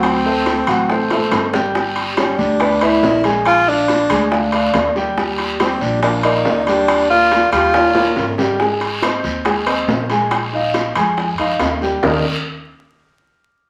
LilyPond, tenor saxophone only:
\new Staff \with { instrumentName = "Tenor saxophone" } { \time 4/4 \key ees \major \tempo 4 = 140 c'2~ c'8 r4. | r4 des'8 d'4 fes'4 r8 | f'8 d'4. r2 | r4 c'8 d'8 d'8 ees'4 d'8~ |
d'8 f'4 f'2 r8 | r1 | r1 | r1 | }